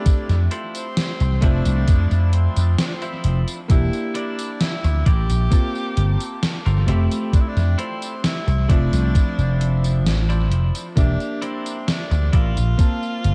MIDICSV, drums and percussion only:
0, 0, Header, 1, 2, 480
1, 0, Start_track
1, 0, Key_signature, -1, "minor"
1, 0, Tempo, 909091
1, 34, Time_signature, 4, 2, 24, 8
1, 7046, End_track
2, 0, Start_track
2, 0, Title_t, "Drums"
2, 31, Note_on_c, 9, 42, 82
2, 31, Note_on_c, 9, 54, 47
2, 32, Note_on_c, 9, 36, 123
2, 84, Note_off_c, 9, 42, 0
2, 84, Note_off_c, 9, 54, 0
2, 85, Note_off_c, 9, 36, 0
2, 155, Note_on_c, 9, 38, 38
2, 155, Note_on_c, 9, 42, 38
2, 155, Note_on_c, 9, 54, 27
2, 208, Note_off_c, 9, 38, 0
2, 208, Note_off_c, 9, 42, 0
2, 208, Note_off_c, 9, 54, 0
2, 271, Note_on_c, 9, 42, 83
2, 323, Note_off_c, 9, 42, 0
2, 395, Note_on_c, 9, 42, 57
2, 395, Note_on_c, 9, 54, 57
2, 448, Note_off_c, 9, 42, 0
2, 448, Note_off_c, 9, 54, 0
2, 512, Note_on_c, 9, 38, 119
2, 512, Note_on_c, 9, 42, 82
2, 512, Note_on_c, 9, 54, 47
2, 565, Note_off_c, 9, 38, 0
2, 565, Note_off_c, 9, 42, 0
2, 565, Note_off_c, 9, 54, 0
2, 635, Note_on_c, 9, 42, 37
2, 635, Note_on_c, 9, 54, 27
2, 688, Note_off_c, 9, 42, 0
2, 688, Note_off_c, 9, 54, 0
2, 750, Note_on_c, 9, 42, 84
2, 752, Note_on_c, 9, 36, 112
2, 803, Note_off_c, 9, 42, 0
2, 805, Note_off_c, 9, 36, 0
2, 873, Note_on_c, 9, 42, 58
2, 873, Note_on_c, 9, 54, 58
2, 926, Note_off_c, 9, 42, 0
2, 926, Note_off_c, 9, 54, 0
2, 991, Note_on_c, 9, 42, 92
2, 991, Note_on_c, 9, 54, 50
2, 993, Note_on_c, 9, 36, 122
2, 1043, Note_off_c, 9, 42, 0
2, 1043, Note_off_c, 9, 54, 0
2, 1046, Note_off_c, 9, 36, 0
2, 1115, Note_on_c, 9, 42, 39
2, 1115, Note_on_c, 9, 54, 27
2, 1168, Note_off_c, 9, 42, 0
2, 1168, Note_off_c, 9, 54, 0
2, 1230, Note_on_c, 9, 42, 83
2, 1283, Note_off_c, 9, 42, 0
2, 1355, Note_on_c, 9, 42, 55
2, 1355, Note_on_c, 9, 54, 57
2, 1407, Note_off_c, 9, 42, 0
2, 1407, Note_off_c, 9, 54, 0
2, 1471, Note_on_c, 9, 38, 126
2, 1471, Note_on_c, 9, 42, 81
2, 1471, Note_on_c, 9, 54, 47
2, 1523, Note_off_c, 9, 38, 0
2, 1523, Note_off_c, 9, 42, 0
2, 1523, Note_off_c, 9, 54, 0
2, 1594, Note_on_c, 9, 42, 38
2, 1594, Note_on_c, 9, 54, 28
2, 1646, Note_off_c, 9, 42, 0
2, 1646, Note_off_c, 9, 54, 0
2, 1710, Note_on_c, 9, 42, 85
2, 1763, Note_off_c, 9, 42, 0
2, 1836, Note_on_c, 9, 42, 55
2, 1836, Note_on_c, 9, 54, 57
2, 1889, Note_off_c, 9, 42, 0
2, 1889, Note_off_c, 9, 54, 0
2, 1952, Note_on_c, 9, 42, 85
2, 1952, Note_on_c, 9, 54, 46
2, 1953, Note_on_c, 9, 36, 123
2, 2005, Note_off_c, 9, 36, 0
2, 2005, Note_off_c, 9, 42, 0
2, 2005, Note_off_c, 9, 54, 0
2, 2076, Note_on_c, 9, 42, 38
2, 2076, Note_on_c, 9, 54, 26
2, 2129, Note_off_c, 9, 42, 0
2, 2129, Note_off_c, 9, 54, 0
2, 2191, Note_on_c, 9, 42, 82
2, 2244, Note_off_c, 9, 42, 0
2, 2316, Note_on_c, 9, 42, 57
2, 2316, Note_on_c, 9, 54, 55
2, 2369, Note_off_c, 9, 42, 0
2, 2369, Note_off_c, 9, 54, 0
2, 2432, Note_on_c, 9, 38, 115
2, 2432, Note_on_c, 9, 42, 79
2, 2432, Note_on_c, 9, 54, 42
2, 2485, Note_off_c, 9, 38, 0
2, 2485, Note_off_c, 9, 42, 0
2, 2485, Note_off_c, 9, 54, 0
2, 2557, Note_on_c, 9, 42, 36
2, 2557, Note_on_c, 9, 54, 27
2, 2610, Note_off_c, 9, 42, 0
2, 2610, Note_off_c, 9, 54, 0
2, 2673, Note_on_c, 9, 36, 116
2, 2673, Note_on_c, 9, 42, 80
2, 2725, Note_off_c, 9, 36, 0
2, 2725, Note_off_c, 9, 42, 0
2, 2796, Note_on_c, 9, 42, 56
2, 2796, Note_on_c, 9, 54, 56
2, 2849, Note_off_c, 9, 42, 0
2, 2849, Note_off_c, 9, 54, 0
2, 2912, Note_on_c, 9, 36, 127
2, 2912, Note_on_c, 9, 42, 90
2, 2912, Note_on_c, 9, 54, 48
2, 2965, Note_off_c, 9, 36, 0
2, 2965, Note_off_c, 9, 42, 0
2, 2965, Note_off_c, 9, 54, 0
2, 3037, Note_on_c, 9, 54, 27
2, 3089, Note_off_c, 9, 54, 0
2, 3152, Note_on_c, 9, 42, 82
2, 3205, Note_off_c, 9, 42, 0
2, 3276, Note_on_c, 9, 42, 53
2, 3276, Note_on_c, 9, 54, 53
2, 3329, Note_off_c, 9, 42, 0
2, 3329, Note_off_c, 9, 54, 0
2, 3394, Note_on_c, 9, 38, 121
2, 3394, Note_on_c, 9, 42, 79
2, 3394, Note_on_c, 9, 54, 44
2, 3447, Note_off_c, 9, 38, 0
2, 3447, Note_off_c, 9, 42, 0
2, 3447, Note_off_c, 9, 54, 0
2, 3517, Note_on_c, 9, 42, 37
2, 3517, Note_on_c, 9, 54, 26
2, 3569, Note_off_c, 9, 42, 0
2, 3569, Note_off_c, 9, 54, 0
2, 3633, Note_on_c, 9, 42, 81
2, 3685, Note_off_c, 9, 42, 0
2, 3757, Note_on_c, 9, 42, 56
2, 3757, Note_on_c, 9, 54, 54
2, 3810, Note_off_c, 9, 42, 0
2, 3810, Note_off_c, 9, 54, 0
2, 3872, Note_on_c, 9, 36, 127
2, 3873, Note_on_c, 9, 42, 78
2, 3873, Note_on_c, 9, 54, 45
2, 3925, Note_off_c, 9, 36, 0
2, 3926, Note_off_c, 9, 42, 0
2, 3926, Note_off_c, 9, 54, 0
2, 3996, Note_on_c, 9, 38, 37
2, 3996, Note_on_c, 9, 42, 36
2, 3996, Note_on_c, 9, 54, 27
2, 4049, Note_off_c, 9, 38, 0
2, 4049, Note_off_c, 9, 42, 0
2, 4049, Note_off_c, 9, 54, 0
2, 4112, Note_on_c, 9, 42, 84
2, 4165, Note_off_c, 9, 42, 0
2, 4236, Note_on_c, 9, 42, 51
2, 4236, Note_on_c, 9, 54, 54
2, 4289, Note_off_c, 9, 42, 0
2, 4289, Note_off_c, 9, 54, 0
2, 4351, Note_on_c, 9, 38, 121
2, 4351, Note_on_c, 9, 42, 74
2, 4351, Note_on_c, 9, 54, 44
2, 4404, Note_off_c, 9, 38, 0
2, 4404, Note_off_c, 9, 42, 0
2, 4404, Note_off_c, 9, 54, 0
2, 4476, Note_on_c, 9, 42, 35
2, 4476, Note_on_c, 9, 54, 26
2, 4529, Note_off_c, 9, 42, 0
2, 4529, Note_off_c, 9, 54, 0
2, 4592, Note_on_c, 9, 36, 113
2, 4592, Note_on_c, 9, 42, 75
2, 4645, Note_off_c, 9, 36, 0
2, 4645, Note_off_c, 9, 42, 0
2, 4715, Note_on_c, 9, 42, 53
2, 4715, Note_on_c, 9, 54, 55
2, 4768, Note_off_c, 9, 42, 0
2, 4768, Note_off_c, 9, 54, 0
2, 4831, Note_on_c, 9, 36, 125
2, 4833, Note_on_c, 9, 42, 83
2, 4833, Note_on_c, 9, 54, 47
2, 4884, Note_off_c, 9, 36, 0
2, 4886, Note_off_c, 9, 42, 0
2, 4886, Note_off_c, 9, 54, 0
2, 4957, Note_on_c, 9, 42, 35
2, 4957, Note_on_c, 9, 54, 27
2, 5010, Note_off_c, 9, 42, 0
2, 5010, Note_off_c, 9, 54, 0
2, 5074, Note_on_c, 9, 42, 78
2, 5127, Note_off_c, 9, 42, 0
2, 5197, Note_on_c, 9, 42, 53
2, 5197, Note_on_c, 9, 54, 50
2, 5250, Note_off_c, 9, 42, 0
2, 5250, Note_off_c, 9, 54, 0
2, 5314, Note_on_c, 9, 38, 117
2, 5314, Note_on_c, 9, 42, 78
2, 5314, Note_on_c, 9, 54, 42
2, 5367, Note_off_c, 9, 38, 0
2, 5367, Note_off_c, 9, 42, 0
2, 5367, Note_off_c, 9, 54, 0
2, 5437, Note_on_c, 9, 42, 36
2, 5437, Note_on_c, 9, 54, 25
2, 5490, Note_off_c, 9, 42, 0
2, 5490, Note_off_c, 9, 54, 0
2, 5552, Note_on_c, 9, 42, 81
2, 5605, Note_off_c, 9, 42, 0
2, 5676, Note_on_c, 9, 42, 55
2, 5676, Note_on_c, 9, 54, 55
2, 5728, Note_off_c, 9, 42, 0
2, 5728, Note_off_c, 9, 54, 0
2, 5791, Note_on_c, 9, 36, 121
2, 5792, Note_on_c, 9, 42, 78
2, 5792, Note_on_c, 9, 54, 46
2, 5844, Note_off_c, 9, 36, 0
2, 5845, Note_off_c, 9, 42, 0
2, 5845, Note_off_c, 9, 54, 0
2, 5915, Note_on_c, 9, 42, 36
2, 5915, Note_on_c, 9, 54, 27
2, 5968, Note_off_c, 9, 42, 0
2, 5968, Note_off_c, 9, 54, 0
2, 6031, Note_on_c, 9, 42, 78
2, 6084, Note_off_c, 9, 42, 0
2, 6157, Note_on_c, 9, 42, 53
2, 6157, Note_on_c, 9, 54, 54
2, 6210, Note_off_c, 9, 42, 0
2, 6210, Note_off_c, 9, 54, 0
2, 6273, Note_on_c, 9, 38, 113
2, 6273, Note_on_c, 9, 42, 76
2, 6273, Note_on_c, 9, 54, 45
2, 6325, Note_off_c, 9, 38, 0
2, 6325, Note_off_c, 9, 42, 0
2, 6325, Note_off_c, 9, 54, 0
2, 6396, Note_on_c, 9, 42, 35
2, 6396, Note_on_c, 9, 54, 25
2, 6449, Note_off_c, 9, 42, 0
2, 6449, Note_off_c, 9, 54, 0
2, 6511, Note_on_c, 9, 42, 74
2, 6512, Note_on_c, 9, 36, 109
2, 6564, Note_off_c, 9, 42, 0
2, 6565, Note_off_c, 9, 36, 0
2, 6637, Note_on_c, 9, 42, 52
2, 6637, Note_on_c, 9, 54, 57
2, 6690, Note_off_c, 9, 42, 0
2, 6690, Note_off_c, 9, 54, 0
2, 6752, Note_on_c, 9, 36, 118
2, 6753, Note_on_c, 9, 42, 81
2, 6753, Note_on_c, 9, 54, 46
2, 6805, Note_off_c, 9, 36, 0
2, 6805, Note_off_c, 9, 42, 0
2, 6805, Note_off_c, 9, 54, 0
2, 6878, Note_on_c, 9, 54, 26
2, 6931, Note_off_c, 9, 54, 0
2, 6993, Note_on_c, 9, 42, 76
2, 7046, Note_off_c, 9, 42, 0
2, 7046, End_track
0, 0, End_of_file